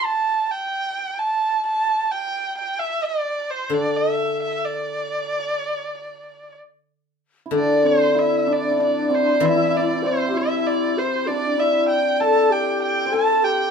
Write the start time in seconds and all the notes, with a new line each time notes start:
0.04 A5
0.51 G5
1.19 A5
1.66 A5
2.11 G5
2.58 G5
2.79 E5
3.05 D5
3.50 C5
3.70 D3
3.74 D5
3.97 E5
4.42 E5
4.65 D5
7.46 E4
7.51 D3 D4 D5
7.84 C4 C5
8.15 E4 E5
8.47 D4
8.53 D5
8.71 E4
8.79 D4
8.83 D5
9.10 C4
9.14 C5
9.40 E3 E4
9.45 E5
9.49 E4
9.56 E4
9.64 E4
9.71 E4
9.77 E4 D5
9.85 E4
9.93 E4
10.03 C4 C5
10.28 G4
10.34 E4 E5
10.67 D5
10.98 C5
11.27 D4 D5
11.58 E4 E5
11.89 G5
12.20 A4 A5
12.50 G4 G5
12.83 G5
13.06 C5
13.11 A4 A5
13.44 G4 G5